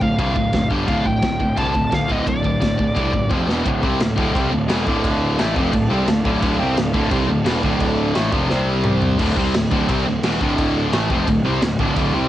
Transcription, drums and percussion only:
0.01 kick
0.19 kick, ride bell
0.36 kick
0.53 kick, snare, ride bell
0.71 kick
0.88 kick, ride bell
1.05 kick
1.23 kick, snare, ride bell
1.40 kick
1.57 kick, ride bell
1.75 kick
1.92 kick, snare, ride bell
2.10 kick
2.27 kick, ride bell
2.44 kick
2.62 kick, snare, ride bell
2.79 kick
2.96 kick, ride bell
3.13 kick
3.30 kick, high tom
3.49 snare
3.65 kick, crash
3.83 kick
4.00 snare, crash
4.18 kick
4.35 kick, crash
4.69 snare, crash
4.87 kick
5.04 kick, crash
5.39 snare, crash
5.56 kick
5.73 kick, crash
6.08 snare, crash
6.25 kick
6.43 kick, crash
6.77 snare, crash
6.94 kick
7.11 kick, crash
7.46 snare, crash
7.64 kick
7.81 kick, crash
8.15 snare, crash
8.33 kick
8.50 snare
8.84 mid tom
9.02 floor tom
9.19 kick, crash
9.37 kick
9.54 snare, crash
9.72 kick
9.89 kick, crash
10.23 snare, crash
10.41 kick
10.58 kick, crash
10.93 snare, crash
11.10 kick
11.28 kick, crash
11.62 snare, crash
11.79 kick
11.96 kick, crash

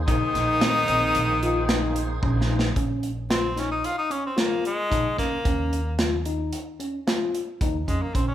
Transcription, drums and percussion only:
0.08 kick, closed hi-hat
0.35 snare, closed hi-hat
0.61 snare, closed hi-hat
0.88 closed hi-hat
1.15 closed hi-hat
1.43 closed hi-hat
1.69 snare, closed hi-hat
1.96 closed hi-hat
2.23 kick
2.41 snare
2.59 snare
2.76 kick, closed hi-hat
3.03 closed hi-hat
3.31 snare, closed hi-hat
3.57 snare, closed hi-hat
3.84 closed hi-hat
4.11 closed hi-hat
4.38 snare, closed hi-hat
4.65 closed hi-hat
4.92 kick, closed hi-hat
5.18 kick, snare, closed hi-hat
5.45 kick, closed hi-hat
5.73 closed hi-hat
5.99 snare, closed hi-hat
6.25 closed hi-hat
6.53 closed hi-hat
6.80 closed hi-hat
7.08 snare, closed hi-hat
7.35 closed hi-hat
7.61 kick, closed hi-hat
7.88 kick, closed hi-hat
8.15 kick, closed hi-hat

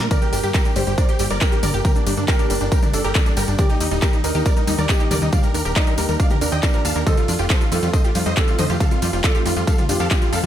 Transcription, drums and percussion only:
0.00 snare, closed hi-hat
0.11 kick, closed hi-hat, mid tom, ride, tambourine
0.22 closed hi-hat, tambourine
0.33 open hi-hat, ride, tambourine
0.44 closed hi-hat, tambourine
0.54 kick, clap, closed hi-hat, ride, tambourine
0.65 closed hi-hat, tambourine
0.76 open hi-hat, ride, tambourine
0.87 closed hi-hat, tambourine
0.98 kick, closed hi-hat, ride, tambourine
1.09 closed hi-hat, tambourine
1.19 open hi-hat, ride, tambourine
1.30 closed hi-hat, tambourine
1.41 kick, clap, closed hi-hat, ride, tambourine
1.52 closed hi-hat, tambourine
1.63 open hi-hat, mid tom, ride, tambourine
1.74 closed hi-hat, tambourine
1.85 kick, closed hi-hat, mid tom, ride, tambourine
1.95 closed hi-hat, tambourine
2.07 open hi-hat, ride, tambourine
2.17 closed hi-hat, tambourine
2.28 kick, clap, closed hi-hat, ride, tambourine
2.39 closed hi-hat, tambourine
2.50 open hi-hat, ride, tambourine
2.61 closed hi-hat, tambourine
2.72 kick, closed hi-hat, ride, tambourine
2.82 closed hi-hat, mid tom, tambourine
2.93 open hi-hat, ride, tambourine
3.04 closed hi-hat, tambourine
3.14 kick, clap, closed hi-hat, ride, tambourine
3.26 closed hi-hat, tambourine
3.37 open hi-hat, ride, tambourine
3.48 closed hi-hat, tambourine
3.58 kick, closed hi-hat, mid tom, ride, tambourine
3.69 closed hi-hat, tambourine
3.80 open hi-hat, ride, tambourine
3.91 closed hi-hat, tambourine
4.02 kick, clap, closed hi-hat, ride, tambourine
4.13 closed hi-hat, tambourine
4.24 open hi-hat, ride, tambourine
4.35 closed hi-hat, tambourine
4.45 kick, closed hi-hat, ride, tambourine
4.57 closed hi-hat, tambourine
4.67 open hi-hat, ride, tambourine
4.78 closed hi-hat, tambourine
4.89 kick, clap, closed hi-hat, ride, tambourine
4.99 closed hi-hat, tambourine
5.11 open hi-hat, mid tom, ride, tambourine
5.22 closed hi-hat, tambourine
5.32 kick, closed hi-hat, mid tom, ride, tambourine
5.43 closed hi-hat, tambourine
5.54 open hi-hat, ride, tambourine
5.65 closed hi-hat, tambourine
5.76 kick, clap, closed hi-hat, ride, tambourine
5.87 closed hi-hat, tambourine
5.98 open hi-hat, ride, tambourine
6.09 closed hi-hat, tambourine
6.20 kick, closed hi-hat, ride, tambourine
6.30 closed hi-hat, mid tom, tambourine
6.41 open hi-hat, ride, tambourine
6.52 closed hi-hat, tambourine
6.63 kick, clap, closed hi-hat, ride, tambourine
6.73 closed hi-hat, tambourine
6.85 open hi-hat, ride, tambourine
6.96 closed hi-hat, tambourine
7.07 kick, closed hi-hat, mid tom, ride, tambourine
7.17 closed hi-hat, tambourine
7.28 open hi-hat, ride, tambourine
7.39 closed hi-hat, tambourine
7.50 kick, clap, closed hi-hat, ride, tambourine
7.61 closed hi-hat, tambourine
7.72 open hi-hat, ride, tambourine
7.83 closed hi-hat, tambourine
7.93 kick, closed hi-hat, ride, tambourine
8.04 closed hi-hat, tambourine
8.15 open hi-hat, ride, tambourine
8.26 closed hi-hat, tambourine
8.37 kick, clap, closed hi-hat, ride, tambourine
8.48 closed hi-hat, tambourine
8.58 open hi-hat, mid tom, ride, tambourine
8.70 closed hi-hat, tambourine
8.80 kick, closed hi-hat, mid tom, ride, tambourine
8.91 closed hi-hat, tambourine
9.02 open hi-hat, ride, tambourine
9.13 closed hi-hat, tambourine
9.24 kick, clap, closed hi-hat, ride, tambourine
9.35 closed hi-hat, tambourine
9.46 open hi-hat, ride, tambourine
9.57 closed hi-hat, tambourine
9.67 kick, closed hi-hat, ride, tambourine
9.78 closed hi-hat, mid tom, tambourine
9.89 open hi-hat, ride, tambourine
10.00 closed hi-hat, tambourine
10.11 kick, clap, closed hi-hat, ride, tambourine
10.22 closed hi-hat, tambourine
10.33 open hi-hat, ride, tambourine

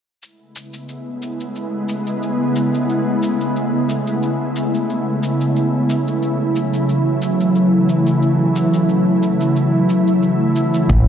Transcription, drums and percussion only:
0.22 cabasa
0.56 cabasa
0.73 cabasa
0.89 cabasa
1.22 cabasa
1.40 cabasa
1.56 cabasa
1.89 cabasa
2.07 cabasa
2.23 cabasa
2.56 cabasa
2.74 cabasa
2.90 cabasa
3.23 cabasa
3.41 cabasa
3.56 cabasa
3.89 cabasa
4.07 cabasa
4.23 cabasa
4.56 cabasa
4.74 cabasa
4.90 cabasa
5.23 cabasa
5.41 cabasa
5.56 cabasa
5.90 cabasa
6.08 cabasa
6.23 cabasa
6.56 cabasa
6.74 cabasa
6.89 cabasa
7.22 cabasa
7.40 cabasa
7.55 cabasa
7.89 cabasa
8.07 cabasa
8.22 cabasa
8.56 cabasa
8.74 cabasa
8.89 cabasa
9.23 cabasa
9.41 cabasa
9.56 cabasa
9.89 cabasa
10.07 cabasa
10.22 cabasa
10.56 cabasa
10.74 cabasa
10.89 kick, cabasa

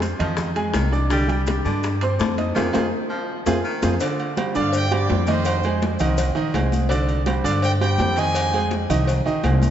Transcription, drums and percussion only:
0.00 high bongo, high conga, high timbale, maracas
0.20 high conga, low conga, high timbale, maracas
0.37 high bongo, high conga, low conga, maracas
0.55 high bongo, high conga, high timbale, maracas
0.74 high bongo, low bongo, high conga, high timbale, maracas
0.92 high bongo, maracas
1.10 high bongo, high conga, maracas
1.29 high conga, high timbale, maracas
1.46 high bongo, high conga, high timbale, maracas
1.65 high conga, maracas
1.83 high bongo, high conga, high timbale, maracas
2.01 high conga, high timbale, maracas
2.19 high bongo, low bongo, high conga, maracas
2.38 high conga, high timbale, maracas
2.56 high bongo, high conga, high timbale, maracas
2.74 high bongo, high conga, high timbale, maracas
3.46 high bongo, high conga, high timbale, maracas
3.82 high bongo, high conga, high timbale, maracas
4.00 cowbell, high conga, low agogo, maracas
4.19 high conga, low agogo, maracas
4.37 cowbell, high conga, low timbale, low agogo, maracas
4.55 high conga, maracas
4.73 cowbell, high conga, low agogo, maracas
4.91 high conga, low agogo, maracas
5.09 cowbell, high conga, low timbale, maracas
5.27 cowbell, high conga, maracas
5.45 cowbell, high conga, low agogo, maracas
5.63 high conga, low agogo, maracas
5.82 cowbell, high conga, low timbale, maracas
5.99 high conga, low conga, low agogo, maracas
6.18 cowbell, high conga, low conga, low agogo, maracas
6.36 high conga, maracas
6.54 cowbell, high conga, low timbale, low agogo, maracas
6.72 high conga, low agogo, maracas
6.89 cowbell, high conga, low agogo, maracas
7.08 high conga, low agogo, maracas
7.26 cowbell, high conga, low timbale, low agogo, maracas
7.44 high conga, maracas
7.62 cowbell, high conga, low agogo, maracas
7.81 high conga, low agogo, maracas
7.98 cowbell, high conga, low timbale, maracas
8.16 cowbell, maracas
8.35 cowbell, high conga, low agogo, maracas
8.53 high conga, low agogo, maracas
8.71 cowbell, high conga, low timbale, maracas
8.90 high conga, low conga, low agogo, maracas
9.07 cowbell, high conga, low agogo, maracas
9.26 high conga, maracas
9.43 cowbell, high conga, low timbale, low agogo, maracas
9.62 high conga, low agogo, maracas

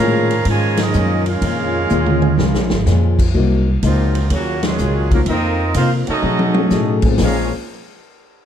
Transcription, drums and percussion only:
0.31 ride
0.45 kick, ride
0.77 snare, ride
0.93 hi-hat pedal
1.26 ride
1.41 kick, ride
1.90 hi-hat pedal
2.06 mid tom
2.22 mid tom
2.39 snare
2.54 snare
2.70 snare
2.86 snare, hi-hat pedal
3.19 kick, crash
3.34 kick
3.82 kick, hi-hat pedal, ride
4.15 ride
4.30 kick, ride
4.63 snare, ride
4.78 hi-hat pedal
5.11 kick, ride
5.26 ride
5.74 kick, hi-hat pedal, ride
6.07 ride
6.22 high tom
6.39 high tom
6.54 high tom
6.70 snare, hi-hat pedal
7.02 kick, crash
7.18 snare, open hi-hat

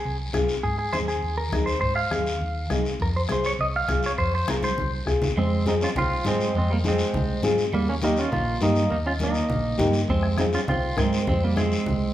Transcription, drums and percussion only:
0.04 high conga, long guiro
0.33 bombo low, bombo rim, high conga, short guiro
0.48 short guiro
0.63 bombo low, high conga, long guiro
0.93 bombo rim, high conga, short guiro
1.08 short guiro
1.22 high conga, long guiro
1.52 bombo low, bombo rim, high conga, short guiro
1.67 short guiro
1.82 bombo low, high conga, long guiro
1.97 bombo rim
2.11 bombo rim, high conga, short guiro
2.27 short guiro
2.41 high conga, long guiro
2.70 bombo low, bombo rim, high conga, short guiro
2.85 short guiro
3.00 bombo low, high conga, long guiro
3.29 bombo rim, high conga, short guiro
3.44 short guiro
3.59 high conga, long guiro
3.88 bombo low, bombo rim, high conga, short guiro
4.03 short guiro
4.18 bombo low, high conga, long guiro
4.48 bombo rim, high conga, short guiro
4.63 high conga, short guiro
4.78 low conga, long guiro
5.07 bombo low, bombo rim, short guiro
5.22 low conga, short guiro
5.37 high conga, long guiro
5.66 high conga, short guiro
5.81 short guiro
5.96 high conga, low conga, long guiro
6.25 high conga, short guiro
6.40 short guiro
6.55 high conga, long guiro
6.84 high conga, short guiro
6.98 short guiro
7.13 high conga, low conga, long guiro
7.43 high conga, short guiro
7.58 short guiro
7.73 high conga, long guiro
8.02 high conga, short guiro
8.16 short guiro
8.32 high conga, low conga, long guiro
8.61 high conga, short guiro
8.75 short guiro
8.90 high conga, long guiro
9.19 high conga, short guiro
9.34 short guiro
9.49 high conga, low conga, long guiro
9.78 high conga, low conga, short guiro
9.93 short guiro
10.08 bombo low, high conga, long guiro
10.23 bombo rim
10.38 bombo rim, high conga, short guiro
10.53 short guiro
10.68 high conga, low conga, long guiro
10.97 bombo low, bombo rim, high conga, short guiro
11.13 short guiro
11.27 bombo low, high conga, low conga, long guiro
11.57 bombo rim, high conga, short guiro
11.72 short guiro
11.86 high conga, low conga, long guiro

